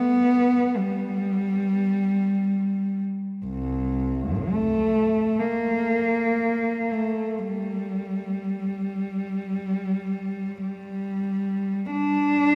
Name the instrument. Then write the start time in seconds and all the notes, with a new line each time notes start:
cello
Already playing: B3
0.77 G3
3.46 C2
4.48 A3
5.39 A#3
6.91 A3
7.45 G3
10.64 G3
11.91 D4